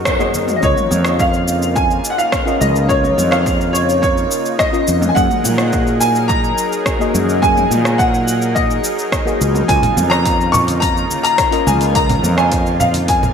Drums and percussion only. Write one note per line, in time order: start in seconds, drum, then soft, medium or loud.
0.05 kick loud
0.05 cross-stick medium
0.05 shaker soft
0.20 shaker soft
0.34 high conga medium
0.34 shaker medium
0.48 mid tom medium
0.48 shaker soft
0.63 kick loud
0.63 shaker soft
0.77 mid tom medium
0.77 shaker soft
0.91 mid tom medium
0.91 shaker medium
1.05 cross-stick medium
1.05 shaker soft
1.20 kick loud
1.20 shaker soft
1.34 shaker soft
1.48 shaker medium
1.62 shaker soft
1.76 kick loud
1.76 shaker soft
1.91 shaker soft
2.05 shaker medium
2.19 shaker soft
2.32 kick loud
2.32 cross-stick medium
2.32 shaker soft
2.47 shaker soft
2.61 mid tom medium
2.61 shaker medium
2.76 shaker soft
2.89 kick loud
2.89 shaker soft
3.04 mid tom medium
3.04 shaker soft
3.18 mid tom medium
3.18 shaker medium
3.32 cross-stick medium
3.32 shaker soft
3.46 kick loud
3.46 shaker soft
3.61 shaker soft
3.75 shaker medium
3.89 shaker soft
4.03 kick loud
4.03 shaker soft
4.18 shaker soft
4.31 shaker medium
4.46 shaker soft
4.59 kick loud
4.59 cross-stick medium
4.59 shaker soft
4.74 shaker soft
4.88 shaker medium
5.02 mid tom medium
5.02 shaker soft
5.16 kick loud
5.16 shaker soft
5.30 mid tom medium
5.30 shaker soft
5.44 mid tom medium
5.44 shaker medium
5.58 cross-stick medium
5.58 shaker soft
5.73 kick loud
5.73 shaker soft
5.87 shaker soft
6.01 shaker medium
6.15 shaker soft
6.30 kick loud
6.30 shaker soft
6.44 shaker soft
6.58 shaker medium
6.73 shaker soft
6.86 kick loud
6.86 cross-stick medium
6.86 shaker soft
7.01 shaker soft
7.14 mid tom medium
7.14 shaker medium
7.29 shaker soft
7.43 kick loud
7.43 shaker soft
7.57 mid tom medium
7.57 shaker soft
7.71 mid tom medium
7.71 shaker medium
7.85 cross-stick medium
7.85 shaker soft
7.99 kick loud
7.99 shaker soft
8.14 shaker soft
8.28 shaker medium
8.42 shaker soft
8.56 kick loud
8.56 shaker soft
8.71 shaker soft
8.84 shaker medium
8.99 shaker soft
9.12 kick loud
9.12 cross-stick medium
9.12 shaker soft
9.28 shaker soft
9.41 shaker medium
9.55 mid tom medium
9.55 shaker soft
9.69 kick loud
9.69 open hi-hat medium
9.69 shaker soft
9.83 mid tom medium
9.83 open hi-hat soft
9.83 low conga loud
9.83 shaker soft
9.97 mid tom medium
9.97 shaker medium
10.11 cross-stick medium
10.11 shaker soft
10.26 kick loud
10.26 open hi-hat medium
10.26 shaker soft
10.41 shaker soft
10.54 low conga loud
10.54 shaker medium
10.68 open hi-hat soft
10.68 high conga medium
10.68 shaker soft
10.82 kick loud
10.82 open hi-hat medium
10.82 shaker soft
10.97 shaker soft
11.11 high conga medium
11.11 shaker medium
11.25 open hi-hat soft
11.25 shaker soft
11.38 kick loud
11.38 cross-stick medium
11.38 open hi-hat medium
11.38 shaker soft
11.52 open hi-hat soft
11.52 shaker soft
11.67 mid tom medium
11.67 high conga medium
11.67 shaker medium
11.81 open hi-hat soft
11.81 shaker soft
11.95 kick loud
11.95 open hi-hat medium
11.95 shaker soft
12.09 mid tom medium
12.09 open hi-hat soft
12.09 low conga medium
12.09 shaker soft
12.23 mid tom medium
12.23 shaker medium
12.38 cross-stick medium
12.38 shaker soft
12.52 kick medium
12.52 open hi-hat medium
12.52 shaker soft
12.66 shaker soft
12.80 low conga medium
12.80 shaker medium
12.94 open hi-hat soft
12.94 high conga medium
12.94 shaker soft
13.08 kick loud
13.08 open hi-hat medium
13.08 shaker soft
13.23 low conga medium
13.23 shaker soft